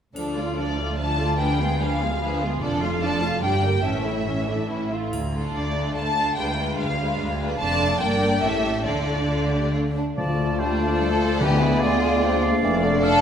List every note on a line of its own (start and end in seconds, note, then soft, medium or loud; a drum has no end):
0.15 2.57 D2 soft
0.15 0.35 F3 soft
0.15 0.35 D4 soft
0.15 0.35 A4 soft
0.15 triangle soft
0.36 0.58 A3 soft
0.36 0.57 F4 soft
0.36 0.58 F4 soft
0.36 0.57 D5 soft
0.57 0.79 F3 soft
0.57 0.78 D4 soft
0.57 0.79 D4 soft
0.57 0.78 A4 soft
0.57 0.96 D5 soft
0.79 0.99 A3 soft
0.79 0.99 F4 soft
0.79 0.99 D5 soft
0.99 1.18 F3 soft
0.99 1.18 D4 soft
0.99 1.18 A4 soft
0.99 1.39 A5 medium
1.19 1.40 A3 soft
1.19 1.40 F4 soft
1.19 1.40 D5 soft
1.38 1.60 F3 soft
1.38 1.60 D4 soft
1.38 1.58 G#4 soft
1.38 1.58 B4 soft
1.38 1.80 G5 medium
1.59 1.81 G#3 soft
1.59 1.81 B3 soft
1.59 1.80 F4 soft
1.59 1.78 G#4 soft
1.79 2.01 F3 soft
1.79 2.01 D4 soft
1.79 2.00 G#4 soft
1.79 2.01 B4 soft
1.79 2.42 F5 medium
2.01 2.22 G#3 soft
2.01 2.22 B3 soft
2.01 2.21 F4 soft
2.01 2.20 G#4 soft
2.21 2.40 F3 soft
2.21 2.40 D4 soft
2.21 2.40 G#4 soft
2.21 2.40 B4 soft
2.41 2.62 G#3 soft
2.41 2.62 B3 soft
2.41 2.61 F4 soft
2.41 2.62 G#4 soft
2.61 3.42 F1 medium
2.61 3.41 F2 soft
2.61 2.81 F3 soft
2.61 2.81 D4 soft
2.61 2.81 A4 soft
2.61 2.81 D5 soft
2.83 3.03 A3 soft
2.83 3.03 F4 soft
2.83 3.03 F5 soft
3.02 3.22 F3 soft
3.02 3.22 D4 soft
3.02 3.23 A4 soft
3.02 3.23 D5 soft
3.02 3.40 A5 medium
3.22 3.43 A3 soft
3.22 3.43 F4 soft
3.22 3.44 F4 soft
3.22 3.43 F5 soft
3.43 3.84 G1 soft
3.43 3.84 G2 soft
3.43 3.62 G3 soft
3.43 3.62 D4 soft
3.43 3.62 G4 soft
3.43 3.62 D5 soft
3.43 3.84 G5 medium
3.63 3.85 A#3 soft
3.63 3.85 G4 soft
3.63 3.84 A#4 soft
3.63 3.84 G5 soft
3.84 4.89 A1 soft
3.84 4.90 A2 soft
3.84 4.04 E3 soft
3.84 4.04 C#4 soft
3.84 4.04 A4 soft
3.84 4.90 E5 soft
4.05 4.27 A3 soft
4.05 4.27 E4 soft
4.05 4.26 C#5 soft
4.26 4.48 E3 soft
4.26 4.46 C#4 soft
4.26 4.48 C#4 soft
4.47 4.69 A3 soft
4.47 4.69 D4 soft
4.47 4.69 E4 soft
4.69 4.89 E3 soft
4.69 4.89 C#4 soft
4.69 4.91 E4 soft
4.91 5.13 A3 soft
4.91 5.13 E4 soft
4.91 5.12 F4 soft
5.11 5.49 D2 soft
5.11 triangle soft
5.33 5.74 A3 soft
5.33 5.74 D4 soft
5.33 5.74 F4 soft
5.33 5.74 A4 soft
5.54 5.91 D2 soft
5.54 5.93 D5 soft
5.75 6.16 A3 soft
5.75 6.16 D4 soft
5.75 6.16 F4 soft
5.75 6.16 A4 soft
5.95 6.32 D2 soft
5.95 6.36 A5 medium
6.17 6.37 A3 soft
6.17 6.37 D4 soft
6.17 6.36 F4 soft
6.17 6.37 A4 soft
6.37 6.74 D2 soft
6.37 6.58 G#3 soft
6.37 6.58 D4 soft
6.37 6.58 F4 soft
6.37 6.57 B4 soft
6.37 6.78 G5 medium
6.59 6.98 G#3 soft
6.59 6.98 D4 soft
6.59 6.98 F4 soft
6.59 6.99 B4 soft
6.79 7.15 D2 soft
6.79 7.39 F5 medium
6.99 7.39 G#3 soft
6.99 7.39 D4 soft
6.99 7.39 F4 soft
6.99 7.39 B4 soft
7.19 7.55 D2 medium
7.40 7.60 G#3 soft
7.40 7.59 D4 soft
7.40 7.60 F4 soft
7.40 7.60 B4 soft
7.59 7.97 F1 medium
7.59 7.98 F2 medium
7.59 7.98 A3 medium
7.59 7.98 D4 medium
7.59 7.98 F4 medium
7.59 7.98 D5 medium
7.59 7.97 A5 medium
8.00 8.41 G1 medium
8.00 8.41 G2 medium
8.00 8.42 A#3 medium
8.00 8.42 D4 medium
8.00 8.42 A#4 soft
8.00 8.41 D5 medium
8.00 8.42 G5 medium
8.42 8.85 A1 medium
8.42 8.85 A2 medium
8.42 8.85 A3 soft
8.42 8.86 C#4 soft
8.42 8.86 G4 soft
8.42 8.85 A4 medium
8.42 8.86 E5 medium
8.85 9.97 D2 soft
8.85 9.96 D3 soft
8.85 9.95 A3 soft
8.85 9.97 D4 soft
8.85 9.25 F4 soft
8.85 9.25 A4 soft
8.85 9.72 D5 medium
9.30 9.50 F4 soft
9.52 9.73 G4 soft
9.74 9.82 F4 soft
9.97 10.05 D4 soft
10.17 12.59 D2 soft
10.17 12.59 D2 medium
10.17 10.75 D3 medium
10.17 10.60 F3 soft
10.17 10.96 A3 medium
10.17 11.37 A3 soft
10.17 11.37 F4 soft
10.17 12.59 D5 soft
10.17 10.61 D5 soft
10.17 10.56 A5 soft
10.59 10.81 G3 soft
10.59 10.97 D4 medium
10.59 11.42 C5 soft
10.59 11.39 A5 soft
10.80 11.41 F3 soft
11.00 11.09 G3 soft
11.00 11.41 A4 medium
11.21 11.30 A3 soft
11.40 11.98 D3 medium
11.40 11.83 E3 soft
11.40 12.63 G#3 medium
11.40 12.59 B3 medium
11.40 12.24 B3 medium
11.40 13.21 D4 medium
11.40 11.62 G4 medium
11.40 12.59 G#4 soft
11.40 11.81 B4 soft
11.40 12.25 G#5 soft
11.61 11.81 E4 medium
11.80 12.25 D3 medium
11.80 12.42 F4 medium
11.80 12.01 D5 medium
12.03 13.05 D5 medium
12.22 12.63 F3 medium
12.22 12.63 A#3 medium
12.22 12.44 G5 medium
12.43 13.02 F5 medium
12.63 13.21 F1 medium
12.63 13.21 F2 medium
12.63 12.85 E3 medium
12.63 13.06 A3 medium
12.63 13.21 A3 medium
12.63 13.21 D4 medium
12.63 13.21 A4 medium
12.63 13.21 D5 medium
12.84 13.21 D3 medium
13.03 13.21 D4 medium
13.03 13.21 A4 medium
13.03 13.21 F5 medium